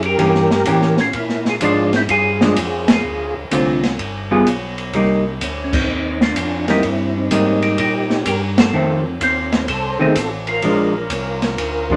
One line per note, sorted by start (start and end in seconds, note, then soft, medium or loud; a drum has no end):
0.00 0.17 F#2 medium
0.00 ride soft
0.06 0.96 G4 medium
0.06 0.96 A#4 loud
0.18 0.65 G2 medium
0.18 0.47 E3 medium
0.18 0.47 A#3 medium
0.18 0.48 C#4 medium
0.18 0.48 G4 medium
0.18 kick soft
0.18 ride medium
0.35 snare soft
0.51 snare medium
0.65 1.12 A2 medium
0.65 0.95 E3 medium
0.65 0.95 A#3 medium
0.65 0.95 C#4 medium
0.65 0.96 G4 medium
0.65 kick soft
0.65 hi-hat pedal medium
0.65 ride medium
0.82 snare soft
0.97 1.14 C#4 medium
0.97 snare soft
1.01 1.16 F4 medium
1.13 1.60 A#2 medium
1.13 1.45 A#3 medium
1.13 kick soft
1.13 ride medium
1.18 1.49 E4 medium
1.29 snare soft
1.45 1.55 F4 medium
1.45 1.55 G#4 medium
1.45 snare soft
1.61 2.07 G#2 medium
1.61 1.90 F3 medium
1.61 1.90 G#3 medium
1.61 1.91 D4 medium
1.61 1.93 D4 medium
1.61 kick soft
1.61 hi-hat pedal medium
1.61 ride medium
1.65 1.93 F4 medium
1.93 2.02 C4 medium
1.93 2.03 E4 medium
1.93 snare soft
1.93 ride soft
2.09 2.55 G2 medium
2.09 2.85 F4 medium
2.09 2.91 G#4 medium
2.09 kick soft
2.09 ride medium
2.41 2.55 F3 medium
2.41 2.55 G#3 medium
2.41 2.56 D4 medium
2.41 snare medium
2.56 3.02 F2 medium
2.56 kick soft
2.56 hi-hat pedal medium
2.56 ride medium
2.88 3.34 G#4 loud
2.88 snare medium
2.88 ride medium
2.92 3.35 F4 medium
3.04 3.34 D2 medium
3.37 3.44 D2 soft
3.51 3.97 C2 medium
3.51 3.80 D3 medium
3.51 3.81 A3 medium
3.51 3.81 C4 medium
3.51 3.81 F4 medium
3.51 kick soft
3.51 hi-hat pedal medium
3.51 ride medium
3.83 snare soft
3.83 ride soft
3.98 4.45 G1 medium
3.98 kick soft
3.98 ride medium
4.31 4.45 G3 medium
4.31 4.45 B3 medium
4.31 4.45 F4 medium
4.31 4.45 G#4 medium
4.46 4.92 B1 medium
4.46 kick soft
4.46 hi-hat pedal medium
4.46 ride medium
4.78 ride soft
4.93 5.40 C2 medium
4.93 5.23 G3 medium
4.93 5.23 A#3 medium
4.93 5.24 D#4 medium
4.93 kick soft
4.93 ride medium
5.41 5.87 D2 medium
5.41 kick soft
5.41 hi-hat pedal medium
5.41 ride medium
5.64 5.73 C#4 medium
5.73 6.18 C4 medium
5.73 6.23 D#4 medium
5.73 kick medium
5.73 crash medium
5.88 6.34 D#2 medium
6.21 6.66 D4 medium
6.21 6.66 F4 medium
6.21 snare medium
6.36 6.82 F2 medium
6.36 kick soft
6.36 hi-hat pedal medium
6.36 ride medium
6.68 6.82 G3 medium
6.68 6.82 A#3 medium
6.68 7.14 C4 medium
6.68 6.83 D#4 medium
6.68 7.18 E4 medium
6.68 snare soft
6.68 ride soft
6.83 7.30 G2 medium
6.83 kick soft
6.83 ride medium
7.16 7.60 C4 medium
7.16 7.63 D#4 medium
7.30 7.77 G#2 medium
7.30 8.04 G3 medium
7.30 8.04 A#3 medium
7.30 8.05 D#4 medium
7.30 kick soft
7.30 hi-hat pedal medium
7.30 ride medium
7.62 7.78 D#4 medium
7.62 7.78 G4 loud
7.62 ride soft
7.78 8.25 A#2 medium
7.78 8.23 D#4 medium
7.78 8.26 G4 loud
7.78 kick soft
7.78 ride medium
8.10 snare soft
8.26 8.72 G2 medium
8.26 8.42 G4 medium
8.26 8.41 A#4 loud
8.26 kick soft
8.26 hi-hat pedal medium
8.26 ride medium
8.58 9.03 F4 medium
8.58 9.03 A4 medium
8.58 snare medium
8.58 ride medium
8.73 9.19 F2 medium
8.73 9.02 D#3 medium
8.73 9.03 A3 medium
8.73 9.03 C4 medium
9.20 9.67 D#2 medium
9.20 9.67 C4 medium
9.20 9.66 F4 medium
9.20 kick soft
9.20 hi-hat pedal medium
9.20 ride medium
9.52 snare medium
9.52 ride soft
9.68 9.98 C2 medium
9.68 9.99 A4 medium
9.68 9.98 C5 loud
9.68 kick soft
9.68 ride medium
9.99 10.08 C2 soft
9.99 10.14 D#3 medium
9.99 10.15 A3 medium
9.99 10.15 C4 medium
9.99 10.16 D#4 medium
9.99 10.15 G#4 loud
10.15 10.62 A1 medium
10.15 10.30 F4 medium
10.15 10.29 A4 medium
10.15 kick soft
10.15 hi-hat pedal medium
10.15 ride medium
10.47 11.96 F4 medium
10.47 11.96 A#4 medium
10.47 ride soft
10.62 11.09 A#1 medium
10.62 10.92 F3 medium
10.62 10.93 G#3 medium
10.62 10.93 D4 medium
10.62 kick soft
10.62 ride medium
11.10 11.56 C2 medium
11.10 kick soft
11.10 hi-hat pedal medium
11.10 ride medium
11.42 snare soft
11.42 ride soft
11.58 11.96 D2 medium
11.58 kick soft
11.58 ride medium
11.90 11.96 F3 medium
11.90 11.96 G#3 medium
11.90 11.96 D4 medium
11.90 kick medium